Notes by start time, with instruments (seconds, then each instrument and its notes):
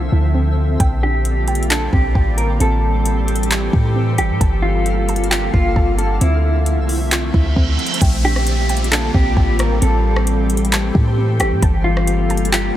Already playing: ambient pad D3 F3 C4 A4 E5, synth texture F3 C4 E5, synth pluck C4 F4
0.12 808-style bass D2, synth pluck E4
0.34 synth pluck C4
0.80 808-style bass A#1, ambient pad G3 A#3 F4, synth texture C4 G4 D5, synth pluck G5, kick, closed hi-hat
1.03 synth pluck D4, clean electric guitar G4
1.25 closed hi-hat
1.48 synth pluck G5, closed hi-hat
1.55 closed hi-hat
1.63 closed hi-hat
1.70 synth pluck D4, clean electric guitar A4, clap, closed hi-hat
1.93 808-style bass A#1, synth pluck C4, clean electric guitar G4, kick
2.15 808-style bass A1, synth pluck G5, kick
2.37 clean electric guitar A#4, closed hi-hat
2.60 808-style bass A1, ambient pad E3 C4 G4 A4, synth texture A3 G4 C5, synth pluck C4, clean electric guitar A4, closed hi-hat
3.05 closed hi-hat
3.28 closed hi-hat
3.36 closed hi-hat
3.43 closed hi-hat
3.51 synth pluck A5, clap, closed hi-hat
3.73 808-style bass A2, synth pluck G4, kick
3.96 synth pluck C4
4.18 808-style bass G1, clean electric guitar G4, closed hi-hat
4.30 808-style bass A2
4.41 808-style bass G1, ambient pad D3 A#3 F4, synth texture A#3 A4 F5, synth pluck A5, kick, closed hi-hat
4.62 clean electric guitar F4, synth pluck F4
4.86 closed hi-hat
5.09 synth pluck A5, closed hi-hat
5.16 closed hi-hat
5.24 closed hi-hat
5.31 synth pluck F4, clean electric guitar G4, clap, closed hi-hat
5.53 808-style bass G1, synth pluck A#3, clean electric guitar F4, kick
5.76 808-style bass G1, synth pluck A5, kick
5.98 clean electric guitar A4, closed hi-hat
6.21 808-style bass D2, ambient pad F3 A3 C4 E5, synth texture F3 C4 E5, synth pluck C4, clean electric guitar E4, closed hi-hat
6.66 closed hi-hat
6.78 808-style bass C2
6.89 open hi-hat
7.11 synth pluck F4, clap, closed hi-hat, reverse cymbal
7.34 808-style bass D2, synth pluck E4, kick
7.56 808-style bass D2, synth pluck C4, kick
7.79 closed hi-hat
7.87 closed hi-hat
7.94 closed hi-hat
8.01 808-style bass A#1, ambient pad D3 G3 A#3 C4 F4, synth texture C4 G4 D5, synth pluck G5, kick, closed hi-hat, downlifter
8.24 synth pluck D4, clean electric guitar G4
8.36 cross-stick
8.47 closed hi-hat
8.69 synth pluck G5, closed hi-hat
8.77 closed hi-hat
8.84 closed hi-hat
8.92 synth pluck D4, clean electric guitar A4, clap, closed hi-hat
9.14 808-style bass A#1, synth pluck C4, clean electric guitar G4, kick
9.37 808-style bass A1, synth pluck G5, kick
9.59 clean electric guitar A#4, cross-stick, closed hi-hat
9.81 808-style bass A1, ambient pad E3 G4 A4, synth texture A3 C5, synth pluck C4, clean electric guitar A4, closed hi-hat
10.16 cross-stick
10.27 closed hi-hat
10.50 closed hi-hat
10.57 closed hi-hat
10.65 closed hi-hat
10.72 synth pluck A5, clap, closed hi-hat
10.95 808-style bass A2, synth pluck G4, kick
11.17 synth pluck C4
11.40 808-style bass G1, clean electric guitar G4, cross-stick, closed hi-hat
11.51 808-style bass A2
11.62 808-style bass G1, ambient pad D3 G3 A#3 F4, synth texture A#3 A4 F5, synth pluck A5, kick, closed hi-hat
11.84 clean electric guitar F4, synth pluck F4
11.97 cross-stick
12.07 closed hi-hat
12.30 synth pluck A5, closed hi-hat
12.37 closed hi-hat
12.45 closed hi-hat
12.52 synth pluck F4, clean electric guitar G4, clap, closed hi-hat